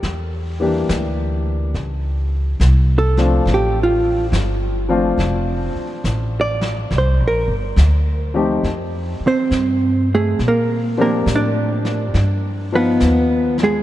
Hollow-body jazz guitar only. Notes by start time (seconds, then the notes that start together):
Already playing: G4
2.98 A4
3.54 G4
3.83 F4
6.41 D5
6.98 C5
7.28 A#4
9.27 C4 C5
10.15 A3 G#4
10.48 A#3 A#4
11.01 A#3 A#4
11.35 D4 D5
12.75 B3 B4
13.63 G#3 G#4